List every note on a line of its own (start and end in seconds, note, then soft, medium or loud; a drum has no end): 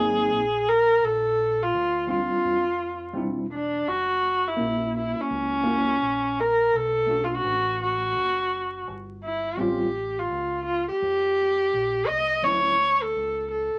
0.00 0.27 G#1 loud
0.00 0.39 F#3 medium
0.00 0.40 A#3 medium
0.00 0.40 C4 medium
0.00 0.41 D#4 medium
0.00 0.70 G#4 loud
0.31 0.99 A#1 medium
0.69 1.06 A#4 loud
1.03 1.70 A#1 loud
1.03 1.64 A4 loud
1.63 2.10 F4 loud
1.74 2.30 D2 medium
2.07 2.62 G3 medium
2.07 2.63 C4 medium
2.07 2.63 D4 medium
2.07 2.64 F4 medium
2.11 3.13 F4 loud
2.32 muted fingered electric bass stroke soft
2.45 3.13 F2 medium
3.14 3.84 E1 medium
3.14 3.43 G3 medium
3.14 3.44 C4 medium
3.14 3.44 D4 medium
3.14 3.45 E4 medium
3.53 3.90 D4 medium
3.88 4.56 F#1 medium
3.88 4.49 F#4 medium
4.48 4.96 E4 medium
4.57 5.15 A#1 medium
4.57 5.60 A#3 medium
4.57 5.61 C#4 medium
4.57 5.61 E4 medium
4.61 5.62 F#4 medium
4.98 5.22 E4 medium
5.18 6.42 C#4 loud
5.18 muted fingered electric bass stroke soft
5.30 5.98 C#2 medium
5.63 5.93 A#3 medium
5.63 5.94 C#4 medium
5.63 5.94 E4 medium
5.67 5.95 F#4 medium
6.01 6.70 A#1 medium
6.40 6.78 A#4 loud
6.73 7.41 B1 loud
6.73 7.26 A4 loud
7.07 7.53 A3 medium
7.07 7.53 C#4 medium
7.07 7.54 D4 medium
7.07 7.55 F#4 medium
7.24 7.36 F4 medium
7.34 7.82 F#4 medium
7.44 8.12 A1 loud
7.83 8.85 F#4 medium
8.16 8.84 F#1 medium
8.87 9.55 G1 medium
9.24 9.61 E4 medium
9.57 10.27 A1 medium
9.57 9.86 G3 medium
9.57 9.87 C4 medium
9.57 9.87 C#4 medium
9.57 9.88 F4 medium
9.57 10.20 G4 medium
10.19 10.65 F4 medium
10.31 10.86 C#2 medium
10.66 10.87 F4 medium
10.89 12.09 G4 loud
10.89 muted fingered electric bass stroke soft
11.02 11.70 F2 medium
11.73 12.07 A#1 medium
12.07 12.43 C2 medium
12.07 12.45 D#5 loud
12.42 13.13 D2 loud
12.42 12.72 F#3 medium
12.42 12.72 A3 medium
12.42 12.73 C#4 medium
12.42 12.74 E4 medium
12.42 13.04 C#5 loud
13.02 13.51 A4 loud
13.16 13.72 C#2 medium
13.51 13.79 A4 medium
13.74 muted fingered electric bass stroke soft